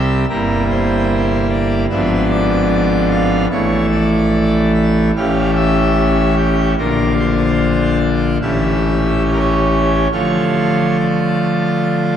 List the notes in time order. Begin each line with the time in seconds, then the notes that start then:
Already playing: C2 C3 G3 C4 G4 E5
0.29 G1 G2 G3 A#3 E4 A#4
0.70 C5
1.49 D5
1.90 G#1 G#2 F3 B3 D4 E5
2.30 D5
3.11 F5
3.51 A1 A2 E3 A3 E4 C#5
3.92 D5
4.74 E5
5.16 A1 A2 E3 C#4 G4 F5
5.56 E5
6.37 G5
6.78 A#1 A#2 D3 D4 F4 A#4
7.19 C5
8.01 D5
8.42 A1 A2 E3 C#4 G4 E5
9.26 C#5
9.32 A#4
9.40 C#5
10.12 D3 F3 A3 F4 C#5
11.00 D5